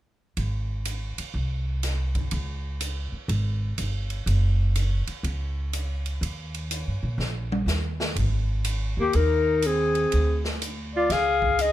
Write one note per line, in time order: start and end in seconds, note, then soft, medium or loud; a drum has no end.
0.37 1.14 G#1 medium
0.37 ride soft
0.85 hi-hat pedal soft
0.85 ride medium
1.18 muted upright bass stroke soft
1.18 ride soft
1.34 2.28 C2 medium
1.83 snare soft
1.83 hi-hat pedal soft
1.83 ride medium
2.15 kick soft
2.15 ride soft
2.31 3.09 C#2 medium
2.31 ride soft
2.81 hi-hat pedal medium
2.81 ride medium
3.12 muted upright bass stroke soft
3.28 3.74 G#1 medium
3.28 ride soft
3.78 4.23 G1 medium
3.78 hi-hat pedal soft
3.78 ride medium
4.10 ride soft
4.26 5.03 F#1 medium
4.26 ride soft
4.75 hi-hat pedal soft
4.75 ride medium
5.07 muted upright bass stroke soft
5.07 ride soft
5.23 6.17 C#2 medium
5.23 ride soft
5.73 hi-hat pedal soft
5.73 ride soft
6.06 ride soft
6.21 6.83 D#2 medium
6.21 ride soft
6.54 ride soft
6.71 hi-hat pedal medium
6.71 ride medium
6.87 7.02 G2 soft
7.03 7.17 A#2 medium
7.18 7.64 A#1 medium
7.18 snare soft
7.52 high tom medium
7.66 8.12 D#2 medium
7.66 snare soft
7.66 hi-hat pedal medium
8.00 snare medium
8.16 8.93 G#1 medium
8.16 kick medium
8.16 ride medium
8.64 hi-hat pedal soft
8.64 ride medium
8.97 9.13 D#2 medium
8.97 9.18 A#3 medium
8.97 9.17 G4 medium
9.13 10.08 D#2 medium
9.13 9.68 D#4 medium
9.13 9.68 A#4 medium
9.13 ride soft
9.62 hi-hat pedal soft
9.62 ride medium
9.66 10.46 C4 medium
9.66 10.46 G#4 medium
9.95 ride soft
10.12 11.06 D2 medium
10.12 ride soft
10.44 snare soft
10.62 hi-hat pedal soft
10.62 ride medium
10.95 11.14 F4 medium
10.95 11.14 D5 medium
11.10 11.72 C#2 medium
11.10 11.61 G#4 medium
11.10 11.63 F5 medium
11.10 snare soft
11.10 ride soft
11.42 kick soft
11.59 11.72 G#4 medium
11.59 11.72 D#5 medium
11.59 hi-hat pedal medium
11.59 ride medium